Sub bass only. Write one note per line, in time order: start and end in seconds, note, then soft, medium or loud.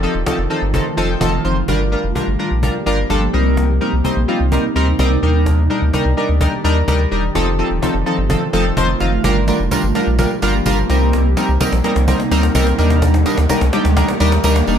0.15 0.24 D#1 medium
0.38 0.48 F1 medium
0.62 0.80 G1 medium
0.97 1.16 F1 medium
1.21 1.39 F1 medium
1.45 1.63 F#1 medium
1.68 1.96 G1 loud
2.04 2.13 F1 medium
2.27 2.37 G1 medium
2.51 2.69 A#1 medium
2.86 3.05 G1 medium
3.10 3.28 G1 medium
3.34 3.80 C2 loud
3.93 4.02 C2 medium
4.16 4.26 A#1 loud
4.40 4.58 C2 medium
4.75 4.94 D2 medium
4.99 5.17 C2 medium
5.23 5.68 D#2 loud
5.82 5.91 D2 medium
6.05 6.15 C2 medium
6.29 6.47 D2 medium
6.64 6.83 D#2 loud
6.88 7.06 D2 medium
7.12 7.30 E1 medium
7.35 7.63 F1 loud
7.71 7.80 D#1 medium
7.94 8.04 F1 medium
8.18 8.36 G1 medium
8.53 8.72 F1 medium
8.77 8.95 F1 medium
9.01 9.19 F#1 medium
9.24 9.52 G1 loud
9.60 9.69 F1 medium
9.83 9.92 G1 loud
10.07 10.25 A#1 medium
10.42 10.61 G1 medium
10.66 10.84 G1 medium
10.90 11.35 C2 loud
11.49 11.58 C2 medium
11.72 11.82 A#1 loud
11.96 12.14 C2 medium
12.31 12.50 D2 medium
12.55 12.73 C2 medium
12.79 13.24 D#2 loud
13.38 13.47 D2 medium
13.61 13.71 C2 medium
13.85 14.03 D2 medium
14.20 14.39 D#2 loud
14.44 14.62 D2 loud
14.67 14.78 E1 loud